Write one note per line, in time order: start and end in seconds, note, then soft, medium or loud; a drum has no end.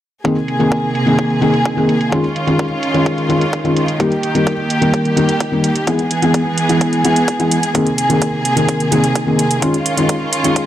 0.24 2.11 C3 medium
0.24 0.34 D#3 medium
0.24 0.35 A#3 medium
0.24 2.11 A#3 medium
0.24 0.35 C4 medium
0.24 2.11 G#4 medium
0.24 0.35 G#4 medium
0.24 kick loud
0.24 closed hi-hat medium
0.37 closed hi-hat soft
0.48 closed hi-hat medium
0.59 0.75 D#3 medium
0.59 0.76 A#3 medium
0.59 0.76 C4 medium
0.59 0.76 G#4 medium
0.59 closed hi-hat soft
0.72 kick loud
0.72 closed hi-hat medium
0.95 closed hi-hat medium
1.06 1.39 D#3 medium
1.06 1.39 A#3 medium
1.06 1.39 C4 medium
1.06 1.40 G#4 medium
1.06 closed hi-hat soft
1.19 kick loud
1.19 closed hi-hat medium
1.30 closed hi-hat soft
1.41 1.52 D#3 medium
1.41 1.52 A#3 medium
1.41 1.52 C4 medium
1.41 1.52 G#4 medium
1.41 closed hi-hat medium
1.54 closed hi-hat soft
1.65 kick loud
1.65 closed hi-hat medium
1.76 1.93 D#3 medium
1.76 1.93 A#3 medium
1.76 1.93 C4 medium
1.76 1.93 G#4 medium
1.89 closed hi-hat medium
2.01 closed hi-hat soft
2.12 2.22 D#3 medium
2.12 5.84 D#3 medium
2.12 2.22 G#3 medium
2.12 2.22 C#4 medium
2.12 3.98 C#4 medium
2.12 3.98 F4 medium
2.12 2.22 F4 medium
2.12 kick loud
2.12 closed hi-hat medium
2.24 closed hi-hat soft
2.36 closed hi-hat medium
2.47 2.63 D#3 medium
2.47 2.63 G#3 medium
2.47 2.63 C#4 medium
2.47 2.64 F4 medium
2.47 closed hi-hat soft
2.59 kick loud
2.59 closed hi-hat medium
2.83 closed hi-hat medium
2.94 3.26 D#3 medium
2.94 3.27 G#3 medium
2.94 3.27 C#4 medium
2.94 3.27 F4 medium
2.94 closed hi-hat soft
3.06 kick loud
3.06 closed hi-hat medium
3.18 closed hi-hat soft
3.29 3.39 D#3 medium
3.29 3.39 G#3 medium
3.29 3.40 C#4 medium
3.29 3.40 F4 medium
3.29 closed hi-hat medium
3.41 closed hi-hat soft
3.53 kick loud
3.53 closed hi-hat medium
3.64 3.80 D#3 medium
3.64 3.80 G#3 medium
3.64 3.81 C#4 medium
3.64 3.81 F4 medium
3.64 closed hi-hat soft
3.77 closed hi-hat medium
3.88 closed hi-hat soft
3.99 4.09 D#3 medium
3.99 4.10 G3 medium
3.99 4.10 A#3 medium
3.99 5.86 A#3 medium
3.99 5.86 G4 medium
3.99 4.10 G4 medium
3.99 kick loud
3.99 closed hi-hat medium
4.12 closed hi-hat soft
4.23 closed hi-hat medium
4.35 4.51 D#3 medium
4.35 4.51 G3 medium
4.35 4.51 A#3 medium
4.35 4.51 G4 medium
4.35 closed hi-hat soft
4.47 kick loud
4.47 closed hi-hat medium
4.70 closed hi-hat medium
4.81 5.14 D#3 medium
4.81 5.14 G3 medium
4.81 5.14 A#3 medium
4.81 5.15 G4 medium
4.81 closed hi-hat soft
4.94 kick loud
4.94 closed hi-hat medium
5.05 closed hi-hat soft
5.16 5.27 D#3 medium
5.16 5.27 G3 medium
5.16 5.27 A#3 medium
5.16 5.27 G4 medium
5.16 closed hi-hat medium
5.29 closed hi-hat soft
5.40 kick loud
5.40 closed hi-hat medium
5.52 5.68 D#3 medium
5.52 5.68 G3 medium
5.52 5.68 A#3 medium
5.52 5.68 G4 medium
5.64 closed hi-hat medium
5.76 closed hi-hat soft
5.87 5.97 E3 medium
5.87 7.73 E3 medium
5.87 5.97 G#3 medium
5.87 7.73 B3 medium
5.87 5.97 B3 medium
5.87 7.73 G#4 medium
5.87 5.98 G#4 medium
5.87 kick loud
5.87 closed hi-hat medium
5.99 closed hi-hat soft
6.11 closed hi-hat medium
6.22 6.38 E3 medium
6.22 6.38 G#3 medium
6.22 6.38 B3 medium
6.22 6.39 G#4 medium
6.22 closed hi-hat soft
6.34 kick loud
6.34 closed hi-hat medium
6.58 closed hi-hat medium
6.69 7.01 E3 medium
6.69 7.02 G#3 medium
6.69 7.02 B3 medium
6.69 7.02 G#4 medium
6.69 closed hi-hat soft
6.81 kick loud
6.81 closed hi-hat medium
6.93 closed hi-hat soft
7.04 7.14 E3 medium
7.04 7.14 G#3 medium
7.04 7.15 B3 medium
7.04 7.15 G#4 medium
7.04 closed hi-hat medium
7.16 closed hi-hat soft
7.28 kick loud
7.28 closed hi-hat medium
7.39 7.55 E3 medium
7.39 7.55 G#3 medium
7.39 7.56 B3 medium
7.39 7.56 G#4 medium
7.39 closed hi-hat soft
7.51 closed hi-hat medium
7.63 closed hi-hat soft
7.74 9.60 C3 medium
7.74 7.84 D#3 medium
7.74 9.60 A#3 medium
7.74 7.85 A#3 medium
7.74 7.85 C4 medium
7.74 9.60 G#4 medium
7.74 7.85 G#4 medium
7.74 kick loud
7.74 closed hi-hat medium
7.86 closed hi-hat soft
7.98 closed hi-hat medium
8.09 8.26 D#3 medium
8.09 8.26 A#3 medium
8.09 8.26 C4 medium
8.09 8.26 G#4 medium
8.09 closed hi-hat soft
8.22 kick loud
8.22 closed hi-hat medium
8.45 closed hi-hat medium
8.56 8.89 D#3 medium
8.56 8.89 A#3 medium
8.56 8.89 C4 medium
8.56 8.89 G#4 medium
8.56 closed hi-hat soft
8.69 kick loud
8.69 closed hi-hat medium
8.80 closed hi-hat soft
8.91 9.02 D#3 medium
8.91 9.02 A#3 medium
8.91 9.02 C4 medium
8.91 9.02 G#4 medium
8.91 closed hi-hat medium
9.04 closed hi-hat soft
9.15 kick loud
9.15 closed hi-hat medium
9.26 9.43 D#3 medium
9.26 9.43 A#3 medium
9.26 9.43 C4 medium
9.26 9.43 G#4 medium
9.39 closed hi-hat medium
9.51 closed hi-hat soft
9.62 9.72 D#3 medium
9.62 10.66 D#3 medium
9.62 9.72 G#3 medium
9.62 10.66 C#4 medium
9.62 9.72 C#4 medium
9.62 10.66 F4 medium
9.62 9.73 F4 medium
9.62 kick loud
9.62 closed hi-hat medium
9.74 closed hi-hat soft
9.86 closed hi-hat medium
9.97 10.13 D#3 medium
9.97 10.13 G#3 medium
9.97 10.13 C#4 medium
9.97 10.14 F4 medium
9.97 closed hi-hat soft
10.09 kick loud
10.09 closed hi-hat medium
10.33 closed hi-hat medium
10.44 10.66 D#3 medium
10.44 10.66 G#3 medium
10.44 10.66 C#4 medium
10.44 10.66 F4 medium
10.44 closed hi-hat soft
10.56 kick loud
10.56 closed hi-hat medium